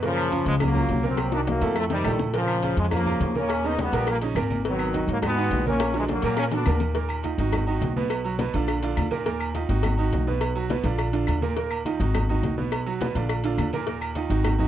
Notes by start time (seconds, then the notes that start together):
Already playing: F#2
0.03 A#2 C#3 F3 A#3 A#4, cowbell, high conga
0.17 high conga, low agogo, claves
0.31 C#3 C#4 F4, cowbell, high conga, low agogo
0.46 C#2 F3 G#3, cowbell, high conga
0.60 C#3 F#3 A#3 C#4 F4, cowbell, high conga, low conga, low agogo, claves
0.74 C#3 C#4 F4, high conga, low conga, low agogo
0.89 C2, cowbell, high conga
1.03 A#2 F#3 A#3 C4 A#4, high conga
1.17 cowbell, high bongo, high conga, low agogo, claves
1.32 D#3 A#3 D4 D#4 F#4, high bongo, high conga, low agogo
1.47 F#3 A#3, cowbell, low bongo, high conga
1.61 F2 A2 A3 A4, cowbell, low agogo
1.76 F3 A3, cowbell, high conga, low agogo, claves
1.90 C3 D#3 G3 C4 D#4, cowbell, low bongo, high conga
2.04 A#1 A2 A3 A4, cowbell, high conga, low timbale, low agogo, claves
2.19 low bongo, high conga, low agogo
2.34 A#2 C#3 F3 A#3 A#4, cowbell, high conga
2.48 high conga, low agogo, claves
2.63 C#3 C#4 F4, cowbell, high conga, low agogo
2.77 F2 F3 G#3, cowbell
2.91 C#3 F3 A#3 C#4 F4, cowbell, high conga, low conga, low agogo, claves
3.06 C#3 C#4 F4, high conga, low conga, low agogo
3.20 D#2, cowbell, high conga, low timbale
3.35 A#2 A#3 C#4 A#4, high conga
3.49 cowbell, high conga, low agogo, claves
3.64 C#3 B3 C#4 D#4, high conga, low agogo
3.79 G3 B3, cowbell, high conga
3.92 A#1 A#2 A#3 A#4, cowbell, high conga, low agogo
4.07 G3 A#3, cowbell, high conga, low agogo, claves
4.21 C#3 C#4 D#4, cowbell, high conga
4.35 G#1 A#2 A#3 A#4, cowbell, high conga, low timbale, low agogo, claves
4.50 high conga, low agogo
4.65 B2 D#3 F#3 B3 B4, cowbell, high conga
4.79 high conga, low agogo, claves
4.93 D#3 D#4 F#4, cowbell, high conga, low agogo
5.08 G#2 F#3 A#3, cowbell, high conga
5.22 D#3 G#3 B3 D#4 F#4, cowbell, high conga, low conga, low agogo, claves
5.36 D#3 D#4 F#4, high conga, low agogo
5.50 A#1, cowbell, high conga, low timbale
5.66 A#2 A#3 C#4 A#4, high conga
5.80 cowbell, high bongo, low agogo, claves
5.94 D3 E3 G#3 D4 F#4, high bongo, high conga, low agogo
6.08 F#3 A#3, cowbell, high conga
6.22 A#2 A#3 A#4, cowbell, high conga, low agogo
6.37 A#3 C#4, cowbell, low bongo, low agogo, claves
6.51 D3 B3 D4 F#4, cowbell, low bongo, high conga
6.66 D#2 A#2 A#3 A#4, cowbell, low bongo, high conga, low agogo, claves
6.80 low bongo, low agogo
6.95 A#2 A#3 A#4, cowbell, high conga
7.09 high conga, low agogo, claves
7.23 D#3 D#4 F4, cowbell, high conga, low agogo
7.38 G#1 D#3 D#4 F#4, cowbell
7.52 cowbell, high conga, low conga, low agogo, claves
7.67 D#3 D#4 F#4, high conga, low agogo
7.81 B1, cowbell, high conga, low timbale
7.96 B2 B3 B4, high conga
8.10 cowbell, high conga, low agogo, claves
8.25 F#3 F#4, high conga, low agogo
8.39 B2 B3 B4, cowbell, high conga
8.54 A#1 D3 D4 F4, cowbell, high conga, low agogo
8.68 cowbell, high conga, low agogo, claves
8.83 D3 D4 F4, cowbell, high conga
8.97 D#2, cowbell, high conga, low agogo, claves
9.11 A#2 A#3 A#4, high conga, low agogo
9.26 A#2 A#3 A#4, cowbell, high conga
9.40 high conga, low agogo, claves
9.54 D#3 D#4 F4, cowbell, high conga, low agogo
9.69 G#1 D#3 D#4 F#4, cowbell
9.83 cowbell, high conga, low conga, low agogo, claves
9.98 D#3 D#4 F#4, high conga, low agogo
10.12 B1, cowbell, high conga
10.27 B2 B3 B4, high conga
10.41 cowbell, high conga, low agogo, claves
10.56 F#3 F#4, high conga, low agogo
10.70 B2 B3 B4, cowbell, high conga
10.84 A#1 D3 D4 F4, cowbell, high conga, low agogo
10.98 cowbell, high conga, low agogo, claves
11.13 D3 D4 F4, cowbell, high conga
11.27 D#2, cowbell, high conga, low agogo, claves
11.41 A#2 A#3 A#4, high conga, low agogo
11.57 A#2 A#3 A#4, cowbell
11.71 high conga, low agogo, claves
11.85 D#3 D#4 F4, cowbell, high conga, low agogo
12.00 G#1 D#3 D#4 F#4, cowbell
12.14 cowbell, high conga, low conga, low agogo, claves
12.29 D#3 D#4 F#4, high conga, low conga, low agogo
12.43 B1, cowbell, high conga
12.57 B2 B3 B4, high conga
12.72 cowbell, high conga, low agogo, claves
12.86 F#3 F#4, high conga, low agogo
13.00 B2 B3 B4, cowbell, high conga
13.15 A#1 D3 D4 F4, cowbell, low agogo
13.29 cowbell, high conga, low agogo, claves
13.44 D3 D4 F4, cowbell
13.58 D#2, cowbell, high conga, low agogo, claves
13.73 A#2 A#3 A#4, high conga, low agogo
13.87 A#2 A#3 A#4, cowbell, high conga
14.01 high conga, low agogo, claves
14.15 D#3 D#4 F4, cowbell, high conga, low agogo
14.30 G#1 D#3 D#4 F#4, cowbell, high conga
14.44 cowbell, high conga, low conga, low agogo, claves
14.59 D#3 D#4 F#4, high conga, low conga, low agogo